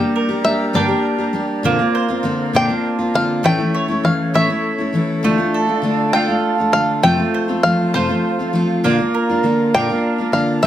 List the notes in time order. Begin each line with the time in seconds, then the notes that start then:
Already playing: G3 G4 D5 G5 A#5
0.00 G3 A#3 D4
0.16 A#4
0.29 G3 A#3 D4 G4
0.44 G3 A#3 D4 G4 E5
0.73 G2 D3 G3 A#3 D4 G4 A#4 D5 G5
0.88 G3 A#3 D4 G4
1.18 G3 A#3 D4 G4
1.33 G3 A#3 D4 G4
1.63 A#2 D3 A#3 C4 F4 A#4 C5
1.79 A#3 C4 F4
1.95 C5
2.09 A#3 C4 F4
2.23 D3 A#3 C4 F4
2.53 A#2 D3 A#3 C4 D4 F4 C5 F5 G5
2.69 A#3 C4 F4
2.99 A#3 C4 F4
3.14 D3 A#3 C4 F4 F5
3.43 A2 E3 A3 C#4 E4 A4 C#5 G5
3.58 A3 C#4 E4
3.74 C#5
3.88 A3 C#4 E4
4.04 E3 A3 C#4 F5
4.34 A2 E3 A3 C#4 E4 C#5 E5
4.47 A3 C#4 E4
4.78 A3 C#4 E4
4.93 E3 A3 C#4 E4
5.23 D3 A3 D4 F4 F5
5.38 A3 D4 F4
5.54 A4
5.67 A3 D4 F4
5.82 D3 A3 D4 F4
6.13 D3 A3 D4 F4 A4 F5 G5
6.28 A3 D4 F4
6.58 A3 D4 F4
6.72 D3 A3 D4 F4 F5
7.03 F2 C3 F3 A3 C4 F4 C5 G5 A5
7.17 F3 A3 C4 F4
7.34 C5
7.48 F3 A3 C4 F4
7.63 F3 A3 C4 F4 F5
7.94 F2 C3 F3 A3 C4 F4 C5 F5
8.08 F3 A3 C4 F4
8.39 F3 A3 C4 F4
8.53 F3 A3 C4 F4
8.84 A#2 D3 A#3 D4 F4 A#4 D5
8.98 A#3 D4 F4
9.14 A#4
9.29 A#3 D4 F4
9.43 D3 A#3 D4 F4
9.74 A#2 D3 A#3 D4 F4 A#4 F5 G5
9.89 A#3 D4 F4
10.18 A#3 D4 F4
10.32 D3 A#3 D4 F4 F5
10.62 A2 D3 A3 D4 E5